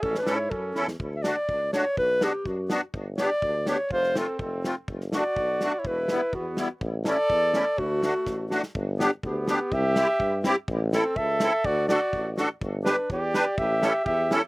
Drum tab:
SD |-oo---oo|--o---o-|--o---o-|--o---o-|
BD |o---o---|o---o---|o---o---|o---o---|

SD |-oo---o-|-oo---o-|--o---o-|--o---o-|
BD |o---o---|o---o---|o---o---|o---o---|

SD |--o-o-oo|--o---o-|--o---o-|--o---o-|
BD |o---o---|o---o---|o---o---|o---o---|

SD |--o---o-|--o---o-|--o---o-|
BD |o---o---|o---o---|o---o---|